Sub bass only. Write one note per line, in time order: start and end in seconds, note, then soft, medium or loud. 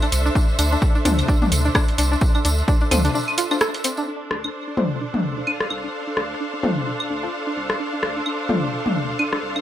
0.12 0.30 C2 loud
0.59 0.76 D2 loud
1.05 1.23 D2 medium
1.52 1.70 D2 loud
1.98 2.16 C2 loud
2.45 2.63 D2 loud
2.91 3.09 D2 medium
4.31 4.49 D2 medium
4.77 4.95 D2 medium
5.24 5.42 D2 medium
5.70 5.88 C2 loud
6.17 6.35 D2 loud
6.63 6.81 D2 medium
7.10 7.28 D2 medium
7.56 7.74 C2 loud
8.03 8.21 D2 loud
8.49 8.67 D2 medium
8.96 9.14 D2 medium
9.42 9.60 C2 loud